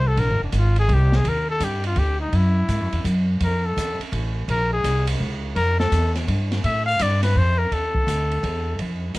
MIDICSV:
0, 0, Header, 1, 5, 480
1, 0, Start_track
1, 0, Key_signature, -1, "major"
1, 0, Tempo, 359066
1, 233, Time_signature, 3, 2, 24, 8
1, 12280, End_track
2, 0, Start_track
2, 0, Title_t, "Trumpet"
2, 0, Program_c, 0, 56
2, 99, Note_on_c, 0, 69, 89
2, 256, Note_on_c, 0, 70, 90
2, 276, Note_off_c, 0, 69, 0
2, 556, Note_off_c, 0, 70, 0
2, 584, Note_on_c, 0, 62, 55
2, 775, Note_on_c, 0, 65, 76
2, 795, Note_off_c, 0, 62, 0
2, 1052, Note_off_c, 0, 65, 0
2, 1060, Note_on_c, 0, 68, 100
2, 1248, Note_on_c, 0, 67, 89
2, 1268, Note_off_c, 0, 68, 0
2, 1551, Note_on_c, 0, 68, 86
2, 1571, Note_off_c, 0, 67, 0
2, 1715, Note_on_c, 0, 70, 94
2, 1735, Note_off_c, 0, 68, 0
2, 1997, Note_off_c, 0, 70, 0
2, 2005, Note_on_c, 0, 69, 93
2, 2196, Note_on_c, 0, 67, 81
2, 2216, Note_off_c, 0, 69, 0
2, 2487, Note_off_c, 0, 67, 0
2, 2494, Note_on_c, 0, 65, 84
2, 2656, Note_on_c, 0, 67, 92
2, 2676, Note_off_c, 0, 65, 0
2, 2937, Note_off_c, 0, 67, 0
2, 2945, Note_on_c, 0, 63, 76
2, 3154, Note_on_c, 0, 64, 80
2, 3174, Note_off_c, 0, 63, 0
2, 4095, Note_off_c, 0, 64, 0
2, 4599, Note_on_c, 0, 70, 83
2, 4889, Note_on_c, 0, 69, 88
2, 4909, Note_off_c, 0, 70, 0
2, 5359, Note_off_c, 0, 69, 0
2, 6016, Note_on_c, 0, 70, 100
2, 6296, Note_off_c, 0, 70, 0
2, 6324, Note_on_c, 0, 68, 92
2, 6763, Note_off_c, 0, 68, 0
2, 7437, Note_on_c, 0, 70, 106
2, 7726, Note_off_c, 0, 70, 0
2, 7743, Note_on_c, 0, 69, 96
2, 8191, Note_off_c, 0, 69, 0
2, 8890, Note_on_c, 0, 76, 93
2, 9165, Note_off_c, 0, 76, 0
2, 9173, Note_on_c, 0, 77, 117
2, 9388, Note_on_c, 0, 74, 94
2, 9408, Note_off_c, 0, 77, 0
2, 9658, Note_off_c, 0, 74, 0
2, 9666, Note_on_c, 0, 71, 94
2, 9866, Note_on_c, 0, 72, 102
2, 9886, Note_off_c, 0, 71, 0
2, 10139, Note_on_c, 0, 70, 96
2, 10159, Note_off_c, 0, 72, 0
2, 10339, Note_on_c, 0, 69, 88
2, 10359, Note_off_c, 0, 70, 0
2, 11768, Note_off_c, 0, 69, 0
2, 12280, End_track
3, 0, Start_track
3, 0, Title_t, "Upright bass"
3, 0, Program_c, 1, 32
3, 0, Note_on_c, 1, 36, 95
3, 214, Note_off_c, 1, 36, 0
3, 225, Note_on_c, 1, 34, 79
3, 376, Note_off_c, 1, 34, 0
3, 376, Note_on_c, 1, 32, 56
3, 525, Note_off_c, 1, 32, 0
3, 533, Note_on_c, 1, 29, 58
3, 692, Note_off_c, 1, 29, 0
3, 702, Note_on_c, 1, 32, 82
3, 1174, Note_off_c, 1, 32, 0
3, 1182, Note_on_c, 1, 36, 98
3, 1654, Note_off_c, 1, 36, 0
3, 1664, Note_on_c, 1, 39, 86
3, 2131, Note_off_c, 1, 39, 0
3, 2139, Note_on_c, 1, 43, 80
3, 2613, Note_off_c, 1, 43, 0
3, 2621, Note_on_c, 1, 38, 92
3, 3094, Note_off_c, 1, 38, 0
3, 3106, Note_on_c, 1, 42, 79
3, 3576, Note_off_c, 1, 42, 0
3, 3583, Note_on_c, 1, 44, 74
3, 3748, Note_off_c, 1, 44, 0
3, 3748, Note_on_c, 1, 42, 55
3, 3899, Note_off_c, 1, 42, 0
3, 3907, Note_on_c, 1, 40, 64
3, 4060, Note_off_c, 1, 40, 0
3, 4067, Note_on_c, 1, 42, 85
3, 4537, Note_off_c, 1, 42, 0
3, 4551, Note_on_c, 1, 41, 85
3, 5019, Note_off_c, 1, 41, 0
3, 5032, Note_on_c, 1, 40, 81
3, 5323, Note_off_c, 1, 40, 0
3, 5506, Note_on_c, 1, 33, 92
3, 5977, Note_off_c, 1, 33, 0
3, 5986, Note_on_c, 1, 34, 82
3, 6457, Note_off_c, 1, 34, 0
3, 6467, Note_on_c, 1, 36, 78
3, 6937, Note_off_c, 1, 36, 0
3, 6951, Note_on_c, 1, 37, 85
3, 7419, Note_off_c, 1, 37, 0
3, 7432, Note_on_c, 1, 41, 83
3, 7900, Note_off_c, 1, 41, 0
3, 7905, Note_on_c, 1, 40, 81
3, 8376, Note_off_c, 1, 40, 0
3, 8389, Note_on_c, 1, 43, 92
3, 8858, Note_off_c, 1, 43, 0
3, 8871, Note_on_c, 1, 45, 79
3, 9339, Note_off_c, 1, 45, 0
3, 9353, Note_on_c, 1, 43, 84
3, 9820, Note_off_c, 1, 43, 0
3, 9832, Note_on_c, 1, 41, 87
3, 10299, Note_off_c, 1, 41, 0
3, 10309, Note_on_c, 1, 39, 79
3, 10778, Note_off_c, 1, 39, 0
3, 10786, Note_on_c, 1, 38, 79
3, 11256, Note_off_c, 1, 38, 0
3, 11269, Note_on_c, 1, 40, 91
3, 11738, Note_off_c, 1, 40, 0
3, 11751, Note_on_c, 1, 41, 77
3, 12219, Note_off_c, 1, 41, 0
3, 12226, Note_on_c, 1, 43, 75
3, 12280, Note_off_c, 1, 43, 0
3, 12280, End_track
4, 0, Start_track
4, 0, Title_t, "Muted upright bass strokes"
4, 5334, Note_on_c, 9, 29, 42
4, 5468, Note_off_c, 9, 29, 0
4, 12280, End_track
5, 0, Start_track
5, 0, Title_t, "Drums"
5, 225, Note_on_c, 9, 36, 19
5, 231, Note_on_c, 9, 51, 56
5, 359, Note_off_c, 9, 36, 0
5, 365, Note_off_c, 9, 51, 0
5, 698, Note_on_c, 9, 44, 50
5, 698, Note_on_c, 9, 51, 70
5, 704, Note_on_c, 9, 36, 20
5, 832, Note_off_c, 9, 44, 0
5, 832, Note_off_c, 9, 51, 0
5, 838, Note_off_c, 9, 36, 0
5, 1016, Note_on_c, 9, 51, 52
5, 1150, Note_off_c, 9, 51, 0
5, 1189, Note_on_c, 9, 36, 24
5, 1189, Note_on_c, 9, 51, 61
5, 1322, Note_off_c, 9, 36, 0
5, 1322, Note_off_c, 9, 51, 0
5, 1501, Note_on_c, 9, 38, 62
5, 1635, Note_off_c, 9, 38, 0
5, 1666, Note_on_c, 9, 36, 24
5, 1667, Note_on_c, 9, 51, 64
5, 1800, Note_off_c, 9, 36, 0
5, 1801, Note_off_c, 9, 51, 0
5, 2144, Note_on_c, 9, 36, 22
5, 2144, Note_on_c, 9, 44, 62
5, 2144, Note_on_c, 9, 51, 72
5, 2278, Note_off_c, 9, 36, 0
5, 2278, Note_off_c, 9, 44, 0
5, 2278, Note_off_c, 9, 51, 0
5, 2455, Note_on_c, 9, 51, 52
5, 2589, Note_off_c, 9, 51, 0
5, 2617, Note_on_c, 9, 51, 59
5, 2625, Note_on_c, 9, 36, 23
5, 2751, Note_off_c, 9, 51, 0
5, 2759, Note_off_c, 9, 36, 0
5, 3108, Note_on_c, 9, 36, 19
5, 3110, Note_on_c, 9, 51, 61
5, 3242, Note_off_c, 9, 36, 0
5, 3243, Note_off_c, 9, 51, 0
5, 3590, Note_on_c, 9, 44, 52
5, 3590, Note_on_c, 9, 51, 70
5, 3591, Note_on_c, 9, 36, 27
5, 3724, Note_off_c, 9, 36, 0
5, 3724, Note_off_c, 9, 44, 0
5, 3724, Note_off_c, 9, 51, 0
5, 3910, Note_on_c, 9, 51, 52
5, 4044, Note_off_c, 9, 51, 0
5, 4073, Note_on_c, 9, 36, 19
5, 4075, Note_on_c, 9, 44, 54
5, 4075, Note_on_c, 9, 51, 65
5, 4207, Note_off_c, 9, 36, 0
5, 4209, Note_off_c, 9, 44, 0
5, 4209, Note_off_c, 9, 51, 0
5, 4550, Note_on_c, 9, 51, 66
5, 4553, Note_on_c, 9, 36, 25
5, 4684, Note_off_c, 9, 51, 0
5, 4687, Note_off_c, 9, 36, 0
5, 5036, Note_on_c, 9, 36, 21
5, 5046, Note_on_c, 9, 44, 65
5, 5046, Note_on_c, 9, 51, 75
5, 5170, Note_off_c, 9, 36, 0
5, 5180, Note_off_c, 9, 44, 0
5, 5180, Note_off_c, 9, 51, 0
5, 5357, Note_on_c, 9, 51, 52
5, 5491, Note_off_c, 9, 51, 0
5, 5514, Note_on_c, 9, 36, 25
5, 5516, Note_on_c, 9, 51, 62
5, 5648, Note_off_c, 9, 36, 0
5, 5649, Note_off_c, 9, 51, 0
5, 5992, Note_on_c, 9, 36, 22
5, 5996, Note_on_c, 9, 51, 65
5, 6125, Note_off_c, 9, 36, 0
5, 6130, Note_off_c, 9, 51, 0
5, 6472, Note_on_c, 9, 36, 20
5, 6473, Note_on_c, 9, 44, 66
5, 6473, Note_on_c, 9, 51, 75
5, 6606, Note_off_c, 9, 36, 0
5, 6606, Note_off_c, 9, 44, 0
5, 6606, Note_off_c, 9, 51, 0
5, 6781, Note_on_c, 9, 51, 87
5, 6915, Note_off_c, 9, 51, 0
5, 6954, Note_on_c, 9, 36, 24
5, 7088, Note_off_c, 9, 36, 0
5, 7433, Note_on_c, 9, 36, 24
5, 7435, Note_on_c, 9, 51, 62
5, 7567, Note_off_c, 9, 36, 0
5, 7569, Note_off_c, 9, 51, 0
5, 7750, Note_on_c, 9, 38, 62
5, 7884, Note_off_c, 9, 38, 0
5, 7914, Note_on_c, 9, 36, 22
5, 7916, Note_on_c, 9, 44, 54
5, 7916, Note_on_c, 9, 51, 75
5, 8048, Note_off_c, 9, 36, 0
5, 8050, Note_off_c, 9, 44, 0
5, 8050, Note_off_c, 9, 51, 0
5, 8229, Note_on_c, 9, 38, 40
5, 8229, Note_on_c, 9, 51, 56
5, 8362, Note_off_c, 9, 38, 0
5, 8362, Note_off_c, 9, 51, 0
5, 8394, Note_on_c, 9, 36, 23
5, 8398, Note_on_c, 9, 51, 67
5, 8527, Note_off_c, 9, 36, 0
5, 8532, Note_off_c, 9, 51, 0
5, 8712, Note_on_c, 9, 38, 52
5, 8712, Note_on_c, 9, 51, 52
5, 8845, Note_off_c, 9, 38, 0
5, 8845, Note_off_c, 9, 51, 0
5, 8874, Note_on_c, 9, 36, 19
5, 8877, Note_on_c, 9, 51, 61
5, 9008, Note_off_c, 9, 36, 0
5, 9011, Note_off_c, 9, 51, 0
5, 9348, Note_on_c, 9, 44, 64
5, 9348, Note_on_c, 9, 51, 87
5, 9352, Note_on_c, 9, 36, 23
5, 9482, Note_off_c, 9, 44, 0
5, 9482, Note_off_c, 9, 51, 0
5, 9486, Note_off_c, 9, 36, 0
5, 9662, Note_on_c, 9, 38, 43
5, 9662, Note_on_c, 9, 51, 80
5, 9795, Note_off_c, 9, 38, 0
5, 9795, Note_off_c, 9, 51, 0
5, 9833, Note_on_c, 9, 36, 25
5, 9967, Note_off_c, 9, 36, 0
5, 10313, Note_on_c, 9, 36, 21
5, 10319, Note_on_c, 9, 51, 53
5, 10446, Note_off_c, 9, 36, 0
5, 10453, Note_off_c, 9, 51, 0
5, 10623, Note_on_c, 9, 36, 57
5, 10757, Note_off_c, 9, 36, 0
5, 10792, Note_on_c, 9, 36, 20
5, 10799, Note_on_c, 9, 44, 58
5, 10799, Note_on_c, 9, 51, 66
5, 10926, Note_off_c, 9, 36, 0
5, 10933, Note_off_c, 9, 44, 0
5, 10933, Note_off_c, 9, 51, 0
5, 11116, Note_on_c, 9, 51, 50
5, 11250, Note_off_c, 9, 51, 0
5, 11272, Note_on_c, 9, 36, 27
5, 11278, Note_on_c, 9, 51, 57
5, 11405, Note_off_c, 9, 36, 0
5, 11412, Note_off_c, 9, 51, 0
5, 11750, Note_on_c, 9, 36, 23
5, 11750, Note_on_c, 9, 51, 60
5, 11883, Note_off_c, 9, 36, 0
5, 11883, Note_off_c, 9, 51, 0
5, 12226, Note_on_c, 9, 44, 63
5, 12226, Note_on_c, 9, 51, 66
5, 12228, Note_on_c, 9, 36, 24
5, 12280, Note_off_c, 9, 36, 0
5, 12280, Note_off_c, 9, 44, 0
5, 12280, Note_off_c, 9, 51, 0
5, 12280, End_track
0, 0, End_of_file